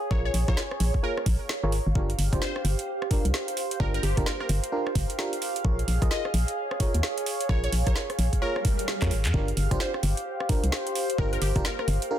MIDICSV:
0, 0, Header, 1, 7, 480
1, 0, Start_track
1, 0, Tempo, 461538
1, 112, Time_signature, 4, 2, 24, 8
1, 12674, End_track
2, 0, Start_track
2, 0, Title_t, "Ambient pad"
2, 0, Program_c, 0, 92
2, 0, Note_on_c, 0, 68, 88
2, 0, Note_on_c, 0, 73, 89
2, 0, Note_on_c, 0, 77, 74
2, 2030, Note_off_c, 0, 68, 0
2, 2031, Note_off_c, 0, 73, 0
2, 2032, Note_on_c, 0, 67, 73
2, 2431, Note_on_c, 0, 72, 79
2, 5632, Note_off_c, 0, 67, 0
2, 5632, Note_off_c, 0, 72, 0
2, 5632, Note_on_c, 0, 68, 91
2, 5816, Note_on_c, 0, 73, 80
2, 9710, Note_on_c, 0, 67, 74
2, 9712, Note_off_c, 0, 68, 0
2, 9712, Note_off_c, 0, 73, 0
2, 10108, Note_on_c, 0, 72, 103
2, 12674, Note_off_c, 0, 67, 0
2, 12674, Note_off_c, 0, 72, 0
2, 12674, Note_off_c, 0, 77, 0
2, 12674, End_track
3, 0, Start_track
3, 0, Title_t, "Synth pluck"
3, 0, Program_c, 1, 84
3, 117, Note_on_c, 1, 73, 83
3, 210, Note_off_c, 1, 73, 0
3, 265, Note_on_c, 1, 73, 78
3, 321, Note_off_c, 1, 73, 0
3, 505, Note_on_c, 1, 73, 94
3, 983, Note_off_c, 1, 73, 0
3, 1078, Note_on_c, 1, 70, 89
3, 1463, Note_off_c, 1, 70, 0
3, 2512, Note_on_c, 1, 72, 94
3, 2659, Note_off_c, 1, 72, 0
3, 3951, Note_on_c, 1, 70, 82
3, 4047, Note_off_c, 1, 70, 0
3, 4101, Note_on_c, 1, 70, 84
3, 4160, Note_off_c, 1, 70, 0
3, 4192, Note_on_c, 1, 67, 93
3, 4339, Note_off_c, 1, 67, 0
3, 4434, Note_on_c, 1, 70, 86
3, 4528, Note_off_c, 1, 70, 0
3, 4581, Note_on_c, 1, 70, 72
3, 4640, Note_off_c, 1, 70, 0
3, 6352, Note_on_c, 1, 75, 93
3, 6499, Note_off_c, 1, 75, 0
3, 7794, Note_on_c, 1, 73, 88
3, 7888, Note_off_c, 1, 73, 0
3, 7944, Note_on_c, 1, 73, 81
3, 8001, Note_off_c, 1, 73, 0
3, 8184, Note_on_c, 1, 73, 97
3, 8662, Note_off_c, 1, 73, 0
3, 8755, Note_on_c, 1, 70, 91
3, 9142, Note_off_c, 1, 70, 0
3, 10195, Note_on_c, 1, 72, 91
3, 10341, Note_off_c, 1, 72, 0
3, 11636, Note_on_c, 1, 70, 87
3, 11729, Note_off_c, 1, 70, 0
3, 11780, Note_on_c, 1, 70, 81
3, 11839, Note_off_c, 1, 70, 0
3, 11873, Note_on_c, 1, 67, 91
3, 12019, Note_off_c, 1, 67, 0
3, 12114, Note_on_c, 1, 70, 89
3, 12208, Note_off_c, 1, 70, 0
3, 12263, Note_on_c, 1, 70, 73
3, 12320, Note_off_c, 1, 70, 0
3, 12674, End_track
4, 0, Start_track
4, 0, Title_t, "FM electric piano"
4, 0, Program_c, 2, 5
4, 113, Note_on_c, 2, 65, 83
4, 113, Note_on_c, 2, 68, 76
4, 113, Note_on_c, 2, 70, 82
4, 113, Note_on_c, 2, 73, 94
4, 320, Note_off_c, 2, 65, 0
4, 321, Note_off_c, 2, 68, 0
4, 321, Note_off_c, 2, 70, 0
4, 321, Note_off_c, 2, 73, 0
4, 501, Note_on_c, 2, 65, 88
4, 501, Note_on_c, 2, 68, 81
4, 501, Note_on_c, 2, 70, 81
4, 501, Note_on_c, 2, 73, 95
4, 598, Note_off_c, 2, 65, 0
4, 598, Note_off_c, 2, 68, 0
4, 598, Note_off_c, 2, 70, 0
4, 598, Note_off_c, 2, 73, 0
4, 1072, Note_on_c, 2, 65, 74
4, 1073, Note_on_c, 2, 68, 71
4, 1073, Note_on_c, 2, 70, 70
4, 1073, Note_on_c, 2, 73, 82
4, 1223, Note_off_c, 2, 65, 0
4, 1223, Note_off_c, 2, 68, 0
4, 1224, Note_off_c, 2, 70, 0
4, 1224, Note_off_c, 2, 73, 0
4, 1701, Note_on_c, 2, 65, 96
4, 1701, Note_on_c, 2, 68, 84
4, 1701, Note_on_c, 2, 70, 84
4, 1701, Note_on_c, 2, 73, 107
4, 1797, Note_off_c, 2, 65, 0
4, 1797, Note_off_c, 2, 68, 0
4, 1798, Note_off_c, 2, 70, 0
4, 1798, Note_off_c, 2, 73, 0
4, 2034, Note_on_c, 2, 62, 75
4, 2034, Note_on_c, 2, 65, 70
4, 2034, Note_on_c, 2, 67, 70
4, 2034, Note_on_c, 2, 70, 80
4, 2184, Note_off_c, 2, 62, 0
4, 2184, Note_off_c, 2, 65, 0
4, 2184, Note_off_c, 2, 67, 0
4, 2184, Note_off_c, 2, 70, 0
4, 2421, Note_on_c, 2, 62, 85
4, 2421, Note_on_c, 2, 65, 81
4, 2421, Note_on_c, 2, 67, 81
4, 2421, Note_on_c, 2, 72, 97
4, 2609, Note_off_c, 2, 62, 0
4, 2609, Note_off_c, 2, 65, 0
4, 2609, Note_off_c, 2, 67, 0
4, 2609, Note_off_c, 2, 72, 0
4, 3233, Note_on_c, 2, 62, 77
4, 3233, Note_on_c, 2, 65, 68
4, 3233, Note_on_c, 2, 67, 68
4, 3233, Note_on_c, 2, 70, 78
4, 3384, Note_off_c, 2, 62, 0
4, 3384, Note_off_c, 2, 65, 0
4, 3384, Note_off_c, 2, 67, 0
4, 3384, Note_off_c, 2, 70, 0
4, 3952, Note_on_c, 2, 62, 84
4, 3952, Note_on_c, 2, 65, 79
4, 3952, Note_on_c, 2, 67, 77
4, 3952, Note_on_c, 2, 70, 93
4, 4160, Note_off_c, 2, 62, 0
4, 4160, Note_off_c, 2, 65, 0
4, 4160, Note_off_c, 2, 67, 0
4, 4160, Note_off_c, 2, 70, 0
4, 4339, Note_on_c, 2, 62, 87
4, 4339, Note_on_c, 2, 65, 82
4, 4339, Note_on_c, 2, 67, 79
4, 4339, Note_on_c, 2, 70, 95
4, 4436, Note_off_c, 2, 70, 0
4, 4437, Note_off_c, 2, 62, 0
4, 4437, Note_off_c, 2, 65, 0
4, 4437, Note_off_c, 2, 67, 0
4, 4911, Note_on_c, 2, 65, 70
4, 4912, Note_on_c, 2, 62, 75
4, 4912, Note_on_c, 2, 67, 73
4, 4912, Note_on_c, 2, 70, 86
4, 5063, Note_off_c, 2, 62, 0
4, 5063, Note_off_c, 2, 65, 0
4, 5063, Note_off_c, 2, 67, 0
4, 5063, Note_off_c, 2, 70, 0
4, 5392, Note_on_c, 2, 62, 76
4, 5392, Note_on_c, 2, 65, 69
4, 5392, Note_on_c, 2, 67, 69
4, 5392, Note_on_c, 2, 70, 85
4, 5543, Note_off_c, 2, 62, 0
4, 5543, Note_off_c, 2, 65, 0
4, 5543, Note_off_c, 2, 67, 0
4, 5543, Note_off_c, 2, 70, 0
4, 5874, Note_on_c, 2, 65, 79
4, 5874, Note_on_c, 2, 68, 68
4, 5874, Note_on_c, 2, 70, 70
4, 5874, Note_on_c, 2, 73, 84
4, 6024, Note_off_c, 2, 65, 0
4, 6024, Note_off_c, 2, 68, 0
4, 6024, Note_off_c, 2, 70, 0
4, 6024, Note_off_c, 2, 73, 0
4, 6260, Note_on_c, 2, 65, 89
4, 6260, Note_on_c, 2, 68, 82
4, 6260, Note_on_c, 2, 70, 78
4, 6260, Note_on_c, 2, 75, 94
4, 6449, Note_off_c, 2, 65, 0
4, 6449, Note_off_c, 2, 68, 0
4, 6449, Note_off_c, 2, 70, 0
4, 6449, Note_off_c, 2, 75, 0
4, 7073, Note_on_c, 2, 65, 74
4, 7073, Note_on_c, 2, 68, 70
4, 7073, Note_on_c, 2, 70, 67
4, 7073, Note_on_c, 2, 73, 85
4, 7224, Note_off_c, 2, 65, 0
4, 7224, Note_off_c, 2, 68, 0
4, 7224, Note_off_c, 2, 70, 0
4, 7224, Note_off_c, 2, 73, 0
4, 7793, Note_on_c, 2, 65, 87
4, 7793, Note_on_c, 2, 68, 78
4, 7793, Note_on_c, 2, 70, 77
4, 7793, Note_on_c, 2, 73, 92
4, 8001, Note_off_c, 2, 65, 0
4, 8001, Note_off_c, 2, 68, 0
4, 8001, Note_off_c, 2, 70, 0
4, 8001, Note_off_c, 2, 73, 0
4, 8181, Note_on_c, 2, 65, 87
4, 8181, Note_on_c, 2, 68, 77
4, 8181, Note_on_c, 2, 70, 81
4, 8182, Note_on_c, 2, 73, 97
4, 8277, Note_off_c, 2, 65, 0
4, 8278, Note_off_c, 2, 68, 0
4, 8278, Note_off_c, 2, 70, 0
4, 8278, Note_off_c, 2, 73, 0
4, 8754, Note_on_c, 2, 65, 77
4, 8754, Note_on_c, 2, 68, 71
4, 8754, Note_on_c, 2, 70, 72
4, 8754, Note_on_c, 2, 73, 89
4, 8904, Note_off_c, 2, 65, 0
4, 8904, Note_off_c, 2, 68, 0
4, 8904, Note_off_c, 2, 70, 0
4, 8904, Note_off_c, 2, 73, 0
4, 9380, Note_on_c, 2, 65, 91
4, 9381, Note_on_c, 2, 68, 85
4, 9381, Note_on_c, 2, 70, 85
4, 9381, Note_on_c, 2, 73, 109
4, 9477, Note_off_c, 2, 65, 0
4, 9477, Note_off_c, 2, 68, 0
4, 9477, Note_off_c, 2, 70, 0
4, 9477, Note_off_c, 2, 73, 0
4, 9712, Note_on_c, 2, 62, 79
4, 9712, Note_on_c, 2, 65, 69
4, 9712, Note_on_c, 2, 67, 68
4, 9712, Note_on_c, 2, 70, 86
4, 9863, Note_off_c, 2, 62, 0
4, 9863, Note_off_c, 2, 65, 0
4, 9863, Note_off_c, 2, 67, 0
4, 9863, Note_off_c, 2, 70, 0
4, 10099, Note_on_c, 2, 67, 82
4, 10099, Note_on_c, 2, 72, 97
4, 10100, Note_on_c, 2, 62, 89
4, 10100, Note_on_c, 2, 65, 82
4, 10288, Note_off_c, 2, 67, 0
4, 10288, Note_off_c, 2, 72, 0
4, 10289, Note_off_c, 2, 62, 0
4, 10289, Note_off_c, 2, 65, 0
4, 10911, Note_on_c, 2, 67, 68
4, 10911, Note_on_c, 2, 70, 84
4, 10912, Note_on_c, 2, 62, 74
4, 10912, Note_on_c, 2, 65, 66
4, 11063, Note_off_c, 2, 62, 0
4, 11063, Note_off_c, 2, 65, 0
4, 11063, Note_off_c, 2, 67, 0
4, 11063, Note_off_c, 2, 70, 0
4, 11632, Note_on_c, 2, 62, 87
4, 11632, Note_on_c, 2, 65, 78
4, 11632, Note_on_c, 2, 67, 79
4, 11632, Note_on_c, 2, 70, 94
4, 11840, Note_off_c, 2, 62, 0
4, 11840, Note_off_c, 2, 65, 0
4, 11840, Note_off_c, 2, 67, 0
4, 11840, Note_off_c, 2, 70, 0
4, 12019, Note_on_c, 2, 62, 86
4, 12019, Note_on_c, 2, 65, 80
4, 12019, Note_on_c, 2, 67, 81
4, 12019, Note_on_c, 2, 70, 95
4, 12117, Note_off_c, 2, 62, 0
4, 12117, Note_off_c, 2, 65, 0
4, 12117, Note_off_c, 2, 67, 0
4, 12117, Note_off_c, 2, 70, 0
4, 12591, Note_on_c, 2, 70, 83
4, 12592, Note_on_c, 2, 62, 76
4, 12592, Note_on_c, 2, 65, 69
4, 12592, Note_on_c, 2, 67, 71
4, 12674, Note_off_c, 2, 62, 0
4, 12674, Note_off_c, 2, 65, 0
4, 12674, Note_off_c, 2, 67, 0
4, 12674, Note_off_c, 2, 70, 0
4, 12674, End_track
5, 0, Start_track
5, 0, Title_t, "FM bass"
5, 0, Program_c, 3, 39
5, 112, Note_on_c, 3, 34, 90
5, 309, Note_off_c, 3, 34, 0
5, 352, Note_on_c, 3, 34, 82
5, 465, Note_off_c, 3, 34, 0
5, 501, Note_on_c, 3, 34, 85
5, 571, Note_off_c, 3, 34, 0
5, 834, Note_on_c, 3, 34, 104
5, 946, Note_off_c, 3, 34, 0
5, 1312, Note_on_c, 3, 34, 91
5, 1425, Note_off_c, 3, 34, 0
5, 1700, Note_on_c, 3, 32, 84
5, 1870, Note_off_c, 3, 32, 0
5, 1940, Note_on_c, 3, 32, 100
5, 2010, Note_off_c, 3, 32, 0
5, 2032, Note_on_c, 3, 31, 96
5, 2229, Note_off_c, 3, 31, 0
5, 2273, Note_on_c, 3, 31, 83
5, 2385, Note_off_c, 3, 31, 0
5, 2420, Note_on_c, 3, 31, 88
5, 2491, Note_off_c, 3, 31, 0
5, 2751, Note_on_c, 3, 31, 99
5, 2865, Note_off_c, 3, 31, 0
5, 3380, Note_on_c, 3, 36, 86
5, 3450, Note_off_c, 3, 36, 0
5, 3953, Note_on_c, 3, 31, 95
5, 4149, Note_off_c, 3, 31, 0
5, 4193, Note_on_c, 3, 31, 83
5, 4306, Note_off_c, 3, 31, 0
5, 4341, Note_on_c, 3, 31, 85
5, 4411, Note_off_c, 3, 31, 0
5, 4673, Note_on_c, 3, 31, 104
5, 4786, Note_off_c, 3, 31, 0
5, 5152, Note_on_c, 3, 31, 92
5, 5265, Note_off_c, 3, 31, 0
5, 5872, Note_on_c, 3, 34, 96
5, 6068, Note_off_c, 3, 34, 0
5, 6113, Note_on_c, 3, 34, 83
5, 6226, Note_off_c, 3, 34, 0
5, 6261, Note_on_c, 3, 34, 91
5, 6331, Note_off_c, 3, 34, 0
5, 6592, Note_on_c, 3, 34, 105
5, 6705, Note_off_c, 3, 34, 0
5, 7222, Note_on_c, 3, 39, 82
5, 7292, Note_off_c, 3, 39, 0
5, 7793, Note_on_c, 3, 34, 95
5, 7989, Note_off_c, 3, 34, 0
5, 8034, Note_on_c, 3, 34, 83
5, 8146, Note_off_c, 3, 34, 0
5, 8181, Note_on_c, 3, 34, 86
5, 8251, Note_off_c, 3, 34, 0
5, 8513, Note_on_c, 3, 34, 101
5, 8626, Note_off_c, 3, 34, 0
5, 9382, Note_on_c, 3, 41, 96
5, 9473, Note_on_c, 3, 32, 91
5, 9488, Note_off_c, 3, 41, 0
5, 9619, Note_on_c, 3, 41, 98
5, 9635, Note_off_c, 3, 32, 0
5, 9690, Note_off_c, 3, 41, 0
5, 9713, Note_on_c, 3, 31, 94
5, 9909, Note_off_c, 3, 31, 0
5, 9953, Note_on_c, 3, 31, 86
5, 10065, Note_off_c, 3, 31, 0
5, 10102, Note_on_c, 3, 31, 86
5, 10172, Note_off_c, 3, 31, 0
5, 10433, Note_on_c, 3, 31, 103
5, 10545, Note_off_c, 3, 31, 0
5, 11061, Note_on_c, 3, 36, 81
5, 11131, Note_off_c, 3, 36, 0
5, 11632, Note_on_c, 3, 31, 95
5, 11829, Note_off_c, 3, 31, 0
5, 11873, Note_on_c, 3, 31, 84
5, 11986, Note_off_c, 3, 31, 0
5, 12020, Note_on_c, 3, 31, 90
5, 12090, Note_off_c, 3, 31, 0
5, 12352, Note_on_c, 3, 31, 106
5, 12465, Note_off_c, 3, 31, 0
5, 12674, End_track
6, 0, Start_track
6, 0, Title_t, "Swell"
6, 0, Program_c, 4, 103
6, 8753, Note_on_c, 4, 60, 61
6, 9713, Note_off_c, 4, 60, 0
6, 12674, End_track
7, 0, Start_track
7, 0, Title_t, "Drums"
7, 113, Note_on_c, 9, 36, 122
7, 217, Note_off_c, 9, 36, 0
7, 354, Note_on_c, 9, 46, 95
7, 458, Note_off_c, 9, 46, 0
7, 501, Note_on_c, 9, 36, 101
7, 502, Note_on_c, 9, 37, 53
7, 594, Note_on_c, 9, 38, 115
7, 605, Note_off_c, 9, 36, 0
7, 606, Note_off_c, 9, 37, 0
7, 698, Note_off_c, 9, 38, 0
7, 742, Note_on_c, 9, 37, 65
7, 833, Note_on_c, 9, 46, 87
7, 846, Note_off_c, 9, 37, 0
7, 937, Note_off_c, 9, 46, 0
7, 981, Note_on_c, 9, 36, 63
7, 1085, Note_off_c, 9, 36, 0
7, 1222, Note_on_c, 9, 37, 66
7, 1312, Note_on_c, 9, 46, 97
7, 1313, Note_on_c, 9, 36, 105
7, 1326, Note_off_c, 9, 37, 0
7, 1416, Note_off_c, 9, 46, 0
7, 1417, Note_off_c, 9, 36, 0
7, 1553, Note_on_c, 9, 38, 115
7, 1657, Note_off_c, 9, 38, 0
7, 1793, Note_on_c, 9, 46, 85
7, 1897, Note_off_c, 9, 46, 0
7, 2032, Note_on_c, 9, 36, 117
7, 2136, Note_off_c, 9, 36, 0
7, 2181, Note_on_c, 9, 42, 36
7, 2273, Note_on_c, 9, 46, 98
7, 2285, Note_off_c, 9, 42, 0
7, 2377, Note_off_c, 9, 46, 0
7, 2420, Note_on_c, 9, 36, 102
7, 2422, Note_on_c, 9, 37, 52
7, 2422, Note_on_c, 9, 42, 64
7, 2513, Note_on_c, 9, 38, 111
7, 2524, Note_off_c, 9, 36, 0
7, 2526, Note_off_c, 9, 37, 0
7, 2526, Note_off_c, 9, 42, 0
7, 2617, Note_off_c, 9, 38, 0
7, 2661, Note_on_c, 9, 37, 64
7, 2753, Note_on_c, 9, 46, 90
7, 2765, Note_off_c, 9, 37, 0
7, 2857, Note_off_c, 9, 46, 0
7, 2901, Note_on_c, 9, 42, 65
7, 3005, Note_off_c, 9, 42, 0
7, 3141, Note_on_c, 9, 37, 65
7, 3232, Note_on_c, 9, 36, 100
7, 3234, Note_on_c, 9, 46, 98
7, 3245, Note_off_c, 9, 37, 0
7, 3336, Note_off_c, 9, 36, 0
7, 3338, Note_off_c, 9, 46, 0
7, 3381, Note_on_c, 9, 42, 63
7, 3473, Note_on_c, 9, 38, 109
7, 3485, Note_off_c, 9, 42, 0
7, 3577, Note_off_c, 9, 38, 0
7, 3621, Note_on_c, 9, 42, 51
7, 3712, Note_on_c, 9, 46, 88
7, 3725, Note_off_c, 9, 42, 0
7, 3816, Note_off_c, 9, 46, 0
7, 3861, Note_on_c, 9, 42, 65
7, 3952, Note_on_c, 9, 36, 112
7, 3965, Note_off_c, 9, 42, 0
7, 4056, Note_off_c, 9, 36, 0
7, 4102, Note_on_c, 9, 42, 37
7, 4193, Note_on_c, 9, 46, 100
7, 4206, Note_off_c, 9, 42, 0
7, 4297, Note_off_c, 9, 46, 0
7, 4340, Note_on_c, 9, 36, 97
7, 4342, Note_on_c, 9, 37, 51
7, 4342, Note_on_c, 9, 42, 65
7, 4434, Note_on_c, 9, 38, 109
7, 4444, Note_off_c, 9, 36, 0
7, 4446, Note_off_c, 9, 37, 0
7, 4446, Note_off_c, 9, 42, 0
7, 4538, Note_off_c, 9, 38, 0
7, 4581, Note_on_c, 9, 37, 62
7, 4672, Note_on_c, 9, 46, 92
7, 4685, Note_off_c, 9, 37, 0
7, 4776, Note_off_c, 9, 46, 0
7, 4821, Note_on_c, 9, 42, 67
7, 4925, Note_off_c, 9, 42, 0
7, 5061, Note_on_c, 9, 37, 64
7, 5152, Note_on_c, 9, 36, 97
7, 5154, Note_on_c, 9, 46, 102
7, 5165, Note_off_c, 9, 37, 0
7, 5256, Note_off_c, 9, 36, 0
7, 5258, Note_off_c, 9, 46, 0
7, 5302, Note_on_c, 9, 42, 66
7, 5394, Note_on_c, 9, 38, 108
7, 5406, Note_off_c, 9, 42, 0
7, 5498, Note_off_c, 9, 38, 0
7, 5542, Note_on_c, 9, 42, 53
7, 5635, Note_on_c, 9, 46, 88
7, 5646, Note_off_c, 9, 42, 0
7, 5739, Note_off_c, 9, 46, 0
7, 5783, Note_on_c, 9, 42, 69
7, 5872, Note_on_c, 9, 36, 114
7, 5887, Note_off_c, 9, 42, 0
7, 5976, Note_off_c, 9, 36, 0
7, 6023, Note_on_c, 9, 42, 37
7, 6114, Note_on_c, 9, 46, 103
7, 6127, Note_off_c, 9, 42, 0
7, 6218, Note_off_c, 9, 46, 0
7, 6260, Note_on_c, 9, 36, 100
7, 6262, Note_on_c, 9, 37, 52
7, 6262, Note_on_c, 9, 42, 67
7, 6353, Note_on_c, 9, 38, 105
7, 6364, Note_off_c, 9, 36, 0
7, 6366, Note_off_c, 9, 37, 0
7, 6366, Note_off_c, 9, 42, 0
7, 6457, Note_off_c, 9, 38, 0
7, 6501, Note_on_c, 9, 37, 64
7, 6592, Note_on_c, 9, 46, 94
7, 6605, Note_off_c, 9, 37, 0
7, 6696, Note_off_c, 9, 46, 0
7, 6741, Note_on_c, 9, 42, 69
7, 6845, Note_off_c, 9, 42, 0
7, 6981, Note_on_c, 9, 37, 67
7, 7072, Note_on_c, 9, 36, 100
7, 7073, Note_on_c, 9, 46, 105
7, 7085, Note_off_c, 9, 37, 0
7, 7176, Note_off_c, 9, 36, 0
7, 7177, Note_off_c, 9, 46, 0
7, 7222, Note_on_c, 9, 42, 66
7, 7313, Note_on_c, 9, 38, 109
7, 7326, Note_off_c, 9, 42, 0
7, 7417, Note_off_c, 9, 38, 0
7, 7463, Note_on_c, 9, 42, 53
7, 7555, Note_on_c, 9, 46, 95
7, 7567, Note_off_c, 9, 42, 0
7, 7659, Note_off_c, 9, 46, 0
7, 7702, Note_on_c, 9, 42, 67
7, 7793, Note_on_c, 9, 36, 116
7, 7806, Note_off_c, 9, 42, 0
7, 7897, Note_off_c, 9, 36, 0
7, 7942, Note_on_c, 9, 42, 38
7, 8034, Note_on_c, 9, 46, 107
7, 8046, Note_off_c, 9, 42, 0
7, 8138, Note_off_c, 9, 46, 0
7, 8181, Note_on_c, 9, 36, 103
7, 8182, Note_on_c, 9, 37, 55
7, 8182, Note_on_c, 9, 42, 66
7, 8274, Note_on_c, 9, 38, 108
7, 8285, Note_off_c, 9, 36, 0
7, 8286, Note_off_c, 9, 37, 0
7, 8286, Note_off_c, 9, 42, 0
7, 8378, Note_off_c, 9, 38, 0
7, 8422, Note_on_c, 9, 37, 67
7, 8422, Note_on_c, 9, 42, 38
7, 8513, Note_on_c, 9, 46, 94
7, 8526, Note_off_c, 9, 37, 0
7, 8526, Note_off_c, 9, 42, 0
7, 8617, Note_off_c, 9, 46, 0
7, 8661, Note_on_c, 9, 36, 59
7, 8662, Note_on_c, 9, 42, 67
7, 8765, Note_off_c, 9, 36, 0
7, 8766, Note_off_c, 9, 42, 0
7, 8903, Note_on_c, 9, 37, 67
7, 8994, Note_on_c, 9, 36, 98
7, 8994, Note_on_c, 9, 46, 105
7, 9007, Note_off_c, 9, 37, 0
7, 9098, Note_off_c, 9, 36, 0
7, 9098, Note_off_c, 9, 46, 0
7, 9142, Note_on_c, 9, 42, 64
7, 9234, Note_on_c, 9, 38, 107
7, 9246, Note_off_c, 9, 42, 0
7, 9338, Note_off_c, 9, 38, 0
7, 9382, Note_on_c, 9, 36, 60
7, 9382, Note_on_c, 9, 39, 70
7, 9382, Note_on_c, 9, 42, 53
7, 9475, Note_on_c, 9, 46, 96
7, 9486, Note_off_c, 9, 36, 0
7, 9486, Note_off_c, 9, 39, 0
7, 9486, Note_off_c, 9, 42, 0
7, 9579, Note_off_c, 9, 46, 0
7, 9623, Note_on_c, 9, 39, 94
7, 9623, Note_on_c, 9, 42, 64
7, 9714, Note_on_c, 9, 36, 113
7, 9727, Note_off_c, 9, 39, 0
7, 9727, Note_off_c, 9, 42, 0
7, 9818, Note_off_c, 9, 36, 0
7, 9862, Note_on_c, 9, 42, 38
7, 9953, Note_on_c, 9, 46, 104
7, 9966, Note_off_c, 9, 42, 0
7, 10057, Note_off_c, 9, 46, 0
7, 10101, Note_on_c, 9, 36, 99
7, 10102, Note_on_c, 9, 37, 56
7, 10102, Note_on_c, 9, 42, 64
7, 10193, Note_on_c, 9, 38, 117
7, 10205, Note_off_c, 9, 36, 0
7, 10206, Note_off_c, 9, 37, 0
7, 10206, Note_off_c, 9, 42, 0
7, 10297, Note_off_c, 9, 38, 0
7, 10340, Note_on_c, 9, 37, 72
7, 10432, Note_on_c, 9, 46, 97
7, 10444, Note_off_c, 9, 37, 0
7, 10536, Note_off_c, 9, 46, 0
7, 10580, Note_on_c, 9, 42, 64
7, 10684, Note_off_c, 9, 42, 0
7, 10820, Note_on_c, 9, 37, 71
7, 10912, Note_on_c, 9, 46, 106
7, 10913, Note_on_c, 9, 36, 103
7, 10924, Note_off_c, 9, 37, 0
7, 11016, Note_off_c, 9, 46, 0
7, 11017, Note_off_c, 9, 36, 0
7, 11061, Note_on_c, 9, 42, 63
7, 11152, Note_on_c, 9, 38, 119
7, 11165, Note_off_c, 9, 42, 0
7, 11256, Note_off_c, 9, 38, 0
7, 11301, Note_on_c, 9, 42, 51
7, 11393, Note_on_c, 9, 46, 95
7, 11405, Note_off_c, 9, 42, 0
7, 11497, Note_off_c, 9, 46, 0
7, 11541, Note_on_c, 9, 42, 65
7, 11632, Note_on_c, 9, 36, 122
7, 11645, Note_off_c, 9, 42, 0
7, 11736, Note_off_c, 9, 36, 0
7, 11781, Note_on_c, 9, 42, 36
7, 11873, Note_on_c, 9, 46, 102
7, 11885, Note_off_c, 9, 42, 0
7, 11977, Note_off_c, 9, 46, 0
7, 12020, Note_on_c, 9, 36, 105
7, 12022, Note_on_c, 9, 37, 59
7, 12022, Note_on_c, 9, 42, 60
7, 12114, Note_on_c, 9, 38, 114
7, 12124, Note_off_c, 9, 36, 0
7, 12126, Note_off_c, 9, 37, 0
7, 12126, Note_off_c, 9, 42, 0
7, 12218, Note_off_c, 9, 38, 0
7, 12262, Note_on_c, 9, 37, 72
7, 12353, Note_on_c, 9, 46, 89
7, 12366, Note_off_c, 9, 37, 0
7, 12457, Note_off_c, 9, 46, 0
7, 12502, Note_on_c, 9, 42, 64
7, 12606, Note_off_c, 9, 42, 0
7, 12674, End_track
0, 0, End_of_file